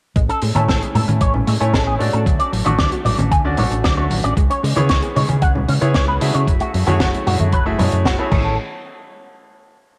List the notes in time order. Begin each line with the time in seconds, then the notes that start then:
0.16 A1 G#3, kick, closed hi-hat
0.29 C#4 A4, closed hi-hat
0.41 A2 G#3, open hi-hat
0.55 A2 A3 C#4 E4 A4 C#5 G#5, closed hi-hat, high conga
0.68 A1 G#3 A4, kick, snare, closed hi-hat
0.82 G#4, closed hi-hat
0.95 A2 G#3 A4, open hi-hat, low conga
1.08 A2 C#4, closed hi-hat, high conga
1.20 A1 G#3 C#5, kick, closed hi-hat
1.34 C#4, low conga
1.47 A2 G#3 A3, open hi-hat
1.60 A2 A3 C#4 E4 C#5 G#5, closed hi-hat
1.73 A1 G#3 A4, kick, snare, closed hi-hat
1.87 G#4
1.99 A2 G#3 A3 D4 F#4 C#5 D5, open hi-hat
2.13 A2 C#4 A4, closed hi-hat
2.26 D2 F#3, kick, closed hi-hat
2.39 C#4 D5, closed hi-hat
2.53 A1 F#3, open hi-hat
2.65 A1 A3 D4 F#4 D5 C#6, closed hi-hat, high conga
2.79 D2 F#3 D5, kick, snare, closed hi-hat
2.92 F#4, closed hi-hat
3.05 A1 F#3 D5, open hi-hat, low conga
3.19 A1 C#4, closed hi-hat, high conga
3.31 D2 F#3 G#5, kick, closed hi-hat
3.44 A3 C#4 D4 F#4 D5
3.57 A1 F#3 A3 D4 F#4 C#6, open hi-hat, low conga
3.71 A1 D4, closed hi-hat
3.84 D2 F#3 D5, kick, snare, closed hi-hat
3.97 A3 D4 F#4 C#5 C#6
4.10 A1 F#3, open hi-hat, high conga
4.24 A1 C#4 D5, closed hi-hat
4.37 C#2 G#3, kick, closed hi-hat
4.50 C#4 C#5, closed hi-hat
4.63 C#3 G#3, open hi-hat
4.76 C#3 B3 C#4 E4 G#4 C#5, closed hi-hat, high conga
4.89 C#2 G#3 C#5, kick, snare, closed hi-hat
5.02 G#4, closed hi-hat
5.16 C#3 G#3 C#5, open hi-hat, low conga
5.29 C#3 C#4, closed hi-hat, high conga
5.42 C#2 G#3 F#5, kick, closed hi-hat
5.55 C#4, low conga
5.68 C#3 G#3 C#4, open hi-hat
5.81 C#3 B3 C#4 E4 G#4 C#5, closed hi-hat
5.94 C#2 G#3 C#5, kick, snare, closed hi-hat
6.08 G#4 B4
6.20 C#3 G#3 A3 E4 F#4 G#4 E5, open hi-hat
6.34 C#3 C#4 C#5, closed hi-hat
6.47 F#1 F#3, kick, closed hi-hat
6.60 A3 F#4, closed hi-hat
6.74 F#2 F#3, open hi-hat
6.86 F#2 A3 C#4 E4 F#4 G#4 C#5, closed hi-hat, high conga
7.00 F#1 F#3 F#4, kick, snare, closed hi-hat
7.14 E4, closed hi-hat
7.26 F#2 F#3 F#4, open hi-hat, low conga
7.39 F#2 A3, closed hi-hat, high conga
7.52 F#1 F#3 B4, kick, closed hi-hat
7.66 A3 E4 F#4 G#4 E5
7.78 F#2 F#3 G#3 A3 E4 F#4 G#4 C#5, open hi-hat, low conga
7.92 F#2 F#3, closed hi-hat
8.05 F#1 F#3 F#4, kick, snare, closed hi-hat
8.18 A3 E4 F#4 G#4 C#5
8.30 A1 G#3 A3 C#4 E4 G#4 A4 C#5, kick, crash, high conga